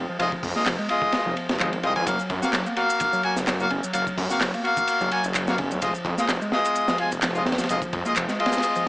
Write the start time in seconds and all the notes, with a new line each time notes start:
0.09 F3
0.19 F1 F3 G#3 F4 D#5, ride
0.32 kick
0.43 F2, kick, open hi-hat
0.55 F1 G#3 A#3 F4 D#5, snare
0.66 F1 F3, snare, clap, ride
0.79 G#3, ride
0.89 G#3 F4 D#5, ride
1.02 kick
1.12 snare, ride
1.25 F1 F3
1.37 ride
1.49 F1, snare, ride
1.60 G#1 F3 G#3 F4 D#5, clap
1.73 ride
1.83 C2 G#3 C4 F4 D#5, ride
1.95 F2 F3 G#3 F4 G#5, ride
2.06 F#1 F#3 A#3 F#4 F5, kick, ride, shaker
2.19 shaker
2.30 F#2, kick, ride
2.42 A#3 C4 F#4 F5, snare, shaker
2.53 F#1 F#3, snare, clap, ride, shaker
2.66 A#3, shaker
2.77 A#3 F#4 F5, ride
2.90 shaker
3.00 kick, ride, shaker
3.13 F#3, shaker
3.23 A#3 F#4 G#5, ride
3.36 F#1, snare, shaker
3.47 F#1 F#3, snare, clap, ride, shaker
3.60 A#3 F#4 F5, shaker
3.70 F#1 C#4, ride
3.84 F#3, shaker
3.93 F#1 F#3 A#3 F#4 F5, ride, shaker
4.07 kick, shaker
4.17 F#2, kick, open hi-hat
4.30 F#1 A#3 C4 F#4 F5, snare, shaker
4.41 F#1 F#3, snare, clap, ride, shaker
4.54 A#3, ride, shaker
4.64 A#3 F#4 F5, ride
4.77 kick, shaker
4.87 ride, shaker
5.01 F#1 F#3, shaker
5.11 A#3 F#4 G#5, ride
5.24 F#1, shaker
5.35 F#3, clap, ride, shaker
5.47 A#3 F#4 F5, snare, shaker
5.58 C#4, kick, ride
5.71 F#2 F#3, shaker
5.81 F1 F3 G#3 F4 D#5, kick, ride, shaker
5.95 shaker
6.05 F2, kick, ride
6.18 G#3 A#3 F4 D#5, snare, shaker
6.28 F1 F3, snare, clap, ride, shaker
6.42 G#3, shaker
6.52 G#3 F4 D#5, snare
6.65 ride, shaker
6.75 ride, shaker
6.88 F3, snare, shaker
6.98 G#3 F4 G#5, ride
7.12 F1, ride, shaker
7.22 F1 F3, snare, clap, ride, shaker
7.35 G#3 F4 D#5, shaker
7.46 F1 C4, snare, ride
7.52 snare, ride
7.58 F3, snare, ride, shaker
7.64 snare, ride
7.69 F1 F3 G#3 F4 D#5, ride, shaker
7.82 kick, shaker
7.93 F2, kick, ride
8.05 F1 G#3 A#3 F4 D#5, shaker
8.15 F1 F3, clap, ride, shaker
8.28 G#3, snare, shaker
8.39 G#3 F4 D#5, ride
8.46 snare, ride
8.52 snare, ride, shaker
8.57 snare, ride
8.63 ride, shaker
8.76 F3, shaker